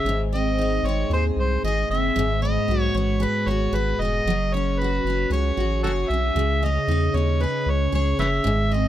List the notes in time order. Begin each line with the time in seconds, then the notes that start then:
Already playing: C#4 G#4 E5
0.05 G#1 G#2
0.33 C4 D#5
0.59 D#4
0.83 G#1 C4 C#5
1.10 D#2 G#4 C5
1.36 C2 C5
1.63 G#1 G#4 D#5
1.90 F#1 C4 E5
2.16 G#1 G#2
2.42 B3 D#5
2.68 B1 F#4
2.81 C#5
2.94 A1 B3 C#5
3.20 G#4 B4
3.46 G#1 F#4 C#5
3.72 G#1 G#4 B4
3.99 E1 B3 D#5
4.25 F#1 F#3
4.53 C#4 C#5
4.79 F#4 B4
5.04 F#1 C#4
5.30 C#2 G#4 C#5
5.57 A1 F#4
5.83 F#1 F#4 G#4 A4 C#5
6.09 B1 C#4 E5
6.35 C#2 C#3
6.63 C#4 D#5
6.88 E2 D#4
7.14 D#2 C#4 C#5
7.40 G#4 B4
7.66 C#2 C#5
7.92 C#2 G#4 C#5
8.18 F#1 C#4 B4 C#5 E5
8.44 G#1 G#2
8.72 C4 D#5